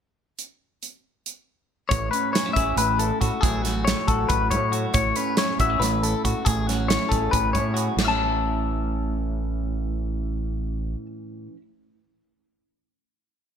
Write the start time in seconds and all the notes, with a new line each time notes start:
0.39 closed hi-hat
0.83 closed hi-hat
1.26 closed hi-hat
1.89 A1 A2 C#5, kick, closed hi-hat
2.11 C#4 B4, closed hi-hat
2.33 C#4 C#5, snare, closed hi-hat
2.46 E4
2.53 A1 G#4 E5, kick, closed hi-hat
2.76 A1 A2 B4, closed hi-hat
2.99 E4 A4, closed hi-hat
3.21 A2 F#4 A4, kick, closed hi-hat
3.41 A1 A2 F#3 A3 E4 G#4, kick, closed hi-hat
3.45 A4
3.62 A3 F#4, snare, closed hi-hat
3.85 E4 C#5, snare, closed hi-hat
4.08 A1 F#4 A4, kick, closed hi-hat
4.29 A1 A2 B4, kick, closed hi-hat
4.51 A2 E4 C#5, kick, closed hi-hat
4.72 F#4 A4, closed hi-hat
4.94 A1 A2 C#5, kick, closed hi-hat
5.16 C#4 B4, closed hi-hat
5.37 E4 C#5, snare, closed hi-hat
5.59 A1 F#4 E5, kick, closed hi-hat
5.70 G#4
5.79 A1 A2 B4, snare, closed hi-hat
6.03 E4 A4, closed hi-hat
6.24 A2 F#4 A4, kick, closed hi-hat
6.45 A1 A2 G#4, kick, closed hi-hat
6.67 C#4 F#4, snare, closed hi-hat
6.88 E4 C#5, snare, closed hi-hat
7.09 A1 G#4 A4, kick, closed hi-hat
7.31 A1 A2 B4, kick, closed hi-hat
7.53 A2 E4 C#5, kick, closed hi-hat
7.74 F#4 G#4, closed hi-hat
7.97 A1 A2 C#5, snare, china
8.02 E3 E5
8.06 C#4 A5
8.11 E4